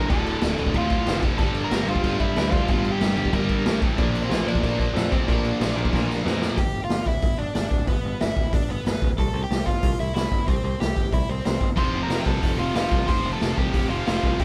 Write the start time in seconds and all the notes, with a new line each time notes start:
0.10 D1 D2 A2 D3 A4 A5, kick, crash
0.26 crash
0.41 D1 D2 A2 D3, snare, crash
0.58 D1 D2 A2 D3, crash
0.66 kick
0.74 D1 D2 A2 D3 F4 F5, kick, crash
0.90 kick, crash
1.06 F1 D2 A2 D3, snare, crash
1.22 D2 A2 D3, kick, crash
1.38 G1 G2 D3 G3 A4 A5, kick, crash
1.54 crash
1.64 A#4 A#5
1.71 G1 G2 D3 G3, snare, crash
1.87 G1 G2 D3 G3 F4 F5, crash
1.96 kick
2.04 G1 G2 D3 G3, kick, crash
2.20 E4 E5, kick, crash
2.36 D2 G2 D3 G3, snare, crash
2.50 G2 D3 G3 F4 F5, kick, crash
2.68 G1 G2 D3 G3, kick, crash
2.85 crash
2.92 G4 G5
3.00 G1 G2 D3 G3, snare, crash
3.16 G1 G2 D3 G3 G4 G5, crash
3.25 kick
3.32 G1 G2 D3 G3 A#4 A#5, kick, crash
3.49 kick, crash
3.66 A1 G2 D3 G3, snare, crash
3.82 G2 D3 G3, kick, crash
3.98 A#1 A#2 F3 A#3 D4 D5, kick, crash
4.15 crash
4.24 C4 C5
4.30 A#1 A#2 F3 A#3, snare, crash
4.46 A#1 A#2 F3 A#3 D4 D5, crash
4.55 kick
4.63 A#1 A#2 F3 A#3, kick, crash
4.80 D4 D5, kick, crash
4.94 F2 A#2 F3 A#3, snare, crash
5.12 A#2 F3 A#3 C4 C5, kick, crash
5.27 A#1 A#2 F3 A#3 D4 D5, kick, crash
5.45 crash
5.60 A#1 A#2 F3 A#3, snare, crash
5.76 A#1 A#2 F3 A#3, crash
5.85 kick
5.93 A#1 A#2 F3 A#3, kick, snare
6.10 snare
6.25 F2 A#2 F3 A#3, snare
6.42 A#2 F3 A#3, snare
6.57 G1 G4 G5, kick, open hi-hat
6.75 G1
6.84 F4 F5
6.89 G1, snare, open hi-hat
7.06 D1 E4 E5, kick
7.22 G1, kick, open hi-hat
7.38 G1 D4 D5
7.55 G1 D4 D5, snare, open hi-hat
7.71 D1, kick
7.87 G1 B3 B4, kick, open hi-hat
8.05 G1
8.20 G1 E4 E5, snare, open hi-hat
8.36 D1, kick
8.53 G1 D4 D5, kick, open hi-hat
8.69 G1 B3 B4
8.85 G1 B3 B4, snare, open hi-hat
9.02 D1, kick
9.18 C2 A4 A5, kick, open hi-hat
9.33 C2
9.43 G4 G5
9.51 C2, snare, open hi-hat
9.66 G1 F4 F5, kick
9.82 C2, kick, open hi-hat
10.00 C2 E4 E5
10.14 C2 E4 E5, snare, open hi-hat
10.32 G1, kick
10.47 C2 C4 C5, kick, open hi-hat
10.64 C2
10.80 C2 G4 G5, snare, open hi-hat
10.96 G1, kick
11.13 C2 E4 E5, kick, open hi-hat
11.29 C2 C4 C5
11.45 C2 C4 C5, snare, open hi-hat
11.61 G1, kick
11.76 F1 F2 C3 F3 C5 C6, kick, crash
11.94 F1
12.03 A#4 A#5
12.08 F1 F2 C3 F3, snare, open hi-hat
12.19 G5
12.24 C2 F2 C3 F3 A4 A5, kick
12.40 F1 F2 C3 F3, kick, open hi-hat
12.58 F1 F2 C3 F3 F4 F5
12.74 F1 F2 C3 F3 F4 F5, snare, open hi-hat
12.91 C2 F2 C3 F3, kick
13.07 F1 F2 C3 F3 C5 C6, kick, open hi-hat
13.25 F1
13.33 A4 A5
13.40 F1 F2 C3 F3, snare, open hi-hat
13.57 C2 F2 C3 F3 G4 G5, kick
13.73 F1 F2 C3 F3, kick, open hi-hat
13.89 F1 F2 C3 F3 F4 F5
14.06 F1 F2 C3 F3 F4 F5, snare, open hi-hat
14.23 C2 F2 C3 F3, kick
14.39 G1 G2 D3 G3 G4 G5, kick, open hi-hat